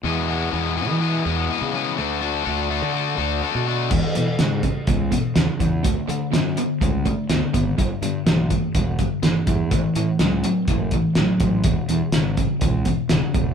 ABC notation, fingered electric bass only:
X:1
M:4/4
L:1/16
Q:1/4=124
K:Emix
V:1 name="Fingered electric bass" clef=bass
E,,4 E,,3 E,3 E,,2 z C,3 | D,,4 D,,3 D,3 D,,2 z B,,3 | E,, z E, z G,,2 z2 C,,2 z2 E,, z E,,2 | D,, z D, z F,,2 z2 C,,2 z2 D,, z G,,,2 |
=G,,, z =G,, z B,,,2 z2 E,,,2 z2 G,,, z E,,2 | A,,, z A,, z C,,2 z2 F,,,2 z2 A,,, z A,,,2 | E,,, z E,, z G,,,2 z2 C,,2 z2 E,,, z E,,,2 |]